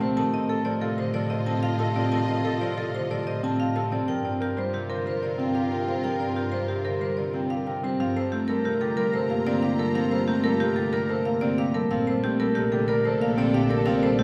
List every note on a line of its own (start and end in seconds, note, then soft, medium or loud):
0.00 0.18 C3 medium
0.00 0.18 D3 medium
0.00 0.63 F3 medium
0.00 3.90 A3 medium
0.00 1.45 C4 medium
0.00 0.22 C4 medium
0.00 0.22 C5 medium
0.16 3.98 A2 medium
0.16 2.10 D#3 loud
0.16 3.88 F4 medium
0.16 0.38 A4 medium
0.16 3.88 D#5 medium
0.16 0.38 A5 medium
0.33 0.55 C4 medium
0.33 0.55 D#5 medium
0.49 0.71 A4 medium
0.64 1.13 F3 medium
0.64 0.87 C5 medium
0.64 0.87 D5 medium
0.81 1.77 C3 medium
0.81 1.03 F4 medium
0.81 1.03 A4 medium
0.98 2.93 D3 medium
0.98 1.20 C5 medium
1.14 1.95 F3 medium
1.14 1.36 A4 medium
1.14 1.36 D5 medium
1.30 1.52 C5 medium
1.30 1.52 D#5 medium
1.46 3.41 C4 medium
1.46 1.69 C4 medium
1.46 1.68 A5 medium
1.63 1.85 F4 medium
1.63 1.85 F5 medium
1.78 2.76 C3 medium
1.78 2.01 A4 medium
1.78 2.01 A5 medium
1.96 2.60 F3 medium
1.96 2.17 C4 medium
1.96 2.17 D5 medium
2.12 4.09 D#3 loud
2.12 2.34 A4 medium
2.12 2.34 A5 medium
2.28 2.50 C4 medium
2.28 2.50 D#5 medium
2.44 2.66 A4 medium
2.61 3.09 F3 medium
2.61 2.83 C5 medium
2.61 2.83 D5 medium
2.77 3.74 C3 medium
2.77 2.99 F4 medium
2.77 2.99 A4 medium
2.94 4.10 D3 medium
2.94 3.16 C5 medium
3.10 3.90 F3 medium
3.10 3.32 A4 medium
3.10 3.32 D5 medium
3.27 3.48 C5 medium
3.27 3.48 D#5 medium
3.42 4.09 C4 medium
3.42 3.64 C4 medium
3.42 3.65 A5 medium
3.59 3.81 F4 medium
3.59 3.81 F5 medium
3.75 4.09 C3 medium
3.75 3.97 A4 medium
3.75 3.97 A5 medium
3.91 4.07 F3 medium
3.91 4.13 C4 medium
3.91 4.13 D5 medium
4.08 7.89 G2 medium
4.08 6.03 F3 medium
4.08 7.79 F4 medium
4.08 7.79 A#4 medium
4.08 4.30 A#4 medium
4.08 4.30 G5 medium
4.25 4.46 C4 medium
4.25 4.46 D5 medium
4.41 4.62 G4 medium
4.41 4.62 A#4 medium
4.57 5.05 G3 medium
4.57 4.78 C5 medium
4.57 4.79 C5 medium
4.73 5.22 C3 medium
4.73 4.95 G4 medium
4.90 6.84 D3 medium
4.90 5.11 A#4 medium
4.90 5.11 C5 medium
5.06 5.87 G3 medium
5.06 5.27 A#4 medium
5.06 5.28 C5 medium
5.22 5.71 C3 medium
5.22 5.43 C5 medium
5.22 5.44 D5 medium
5.38 5.60 C4 medium
5.38 7.34 C4 medium
5.38 5.60 G5 medium
5.55 5.76 G4 medium
5.55 5.76 F5 medium
5.71 6.68 C3 medium
5.71 5.93 A#4 medium
5.71 5.93 G5 medium
5.88 6.51 G3 medium
5.88 6.09 C4 medium
5.88 6.09 C5 medium
6.04 7.99 F3 medium
6.04 6.25 A#4 medium
6.04 6.25 G5 medium
6.20 6.41 C4 medium
6.20 6.41 D5 medium
6.36 6.58 G4 medium
6.36 6.58 A#4 medium
6.52 7.00 G3 medium
6.52 6.74 C5 medium
6.68 7.16 C3 medium
6.68 6.90 G4 medium
6.85 8.01 D3 medium
6.85 7.06 A#4 medium
6.85 7.07 C5 medium
7.01 7.83 G3 medium
7.01 7.23 A#4 medium
7.01 7.23 C5 medium
7.17 7.66 C3 medium
7.17 7.39 C5 medium
7.17 7.39 D5 medium
7.34 7.56 C4 medium
7.34 8.01 C4 medium
7.34 7.55 G5 medium
7.50 7.72 G4 medium
7.50 7.72 F5 medium
7.67 8.01 C3 medium
7.67 7.88 A#4 medium
7.67 7.88 G5 medium
7.83 8.15 G3 medium
7.83 7.98 C4 medium
7.83 8.05 C5 medium
8.00 11.81 G2 medium
8.00 9.93 F3 medium
8.00 8.21 C4 medium
8.00 11.71 F4 medium
8.00 8.21 F5 medium
8.00 11.71 A#5 medium
8.16 8.48 G3 medium
8.16 8.37 A4 medium
8.16 8.37 C5 medium
8.32 10.26 A3 medium
8.32 8.54 C4 medium
8.32 8.53 G4 medium
8.48 8.96 G3 medium
8.48 8.70 A4 medium
8.48 8.70 A#4 medium
8.64 9.12 C3 medium
8.64 8.86 G4 medium
8.64 8.86 A#4 medium
8.81 9.45 D3 medium
8.81 9.02 G4 medium
8.81 9.02 A4 medium
8.97 9.77 G3 medium
8.97 9.19 A#4 medium
9.13 9.61 C3 medium
9.13 9.35 A4 medium
9.13 9.35 C5 medium
9.29 11.24 A#3 medium
9.29 9.52 A#4 medium
9.29 9.51 F5 medium
9.47 10.76 D3 medium
9.47 9.68 C4 medium
9.47 9.68 D5 medium
9.62 10.59 C3 medium
9.62 9.84 G4 medium
9.62 9.84 F5 medium
9.78 10.09 G3 medium
9.78 10.00 A4 medium
9.78 10.00 A#4 medium
9.95 11.89 F3 medium
9.95 10.16 C4 medium
9.95 10.17 F5 medium
10.11 10.43 G3 medium
10.11 10.33 A4 medium
10.11 10.33 C5 medium
10.27 12.23 A3 medium
10.27 10.49 C4 medium
10.27 10.49 G4 medium
10.44 10.91 G3 medium
10.44 10.66 A4 medium
10.44 10.65 A#4 medium
10.60 11.07 C3 medium
10.60 10.82 G4 medium
10.60 10.82 A#4 medium
10.76 11.40 D3 medium
10.76 10.98 G4 medium
10.76 10.98 A4 medium
10.92 11.73 G3 medium
10.92 11.14 A#4 medium
10.92 11.14 A#4 loud
11.09 11.56 C3 medium
11.09 11.31 A4 medium
11.09 11.31 C5 medium
11.25 13.19 A#3 medium
11.25 11.47 A#4 medium
11.25 11.47 F5 medium
11.41 11.92 D3 medium
11.41 11.63 C4 medium
11.41 11.63 D5 medium
11.58 11.92 C3 medium
11.58 11.80 G4 medium
11.58 11.80 F5 medium
11.74 11.92 G3 medium
11.74 11.96 A4 medium
11.74 11.96 A#4 medium
11.91 14.23 A#1 medium
11.91 13.84 F3 loud
11.91 12.12 C4 medium
11.91 14.23 D4 medium
11.91 14.23 A4 medium
11.91 12.12 F5 medium
12.07 12.38 G3 medium
12.07 12.29 A4 medium
12.07 12.28 C5 medium
12.24 14.17 A3 medium
12.24 12.45 C4 medium
12.24 12.45 G4 medium
12.40 12.87 G3 medium
12.40 12.61 A4 medium
12.40 12.61 A#4 medium
12.55 13.04 C3 medium
12.55 12.77 G4 medium
12.55 12.77 A#4 medium
12.72 13.36 D3 medium
12.72 12.94 G4 medium
12.72 12.94 A4 medium
12.88 13.68 G3 loud
12.88 13.10 A#4 medium
12.88 13.10 A#4 loud
13.05 13.53 C3 medium
13.05 13.26 A4 medium
13.05 13.26 C5 medium
13.20 14.23 A#3 medium
13.20 13.43 A#4 medium
13.20 13.43 F5 medium
13.38 14.23 D3 medium
13.38 13.59 C4 loud
13.38 13.59 D5 medium
13.54 14.23 C3 medium
13.54 13.75 G4 medium
13.54 13.75 F5 medium
13.69 14.01 G3 medium
13.69 13.91 A4 medium
13.69 13.92 A#4 medium
13.86 14.23 F3 loud
13.86 14.08 C4 loud
13.86 14.08 F5 medium
14.02 14.23 G3 medium
14.02 14.23 A4 medium
14.02 14.23 C5 medium
14.18 14.23 A3 medium
14.18 14.23 C4 medium
14.18 14.23 G4 medium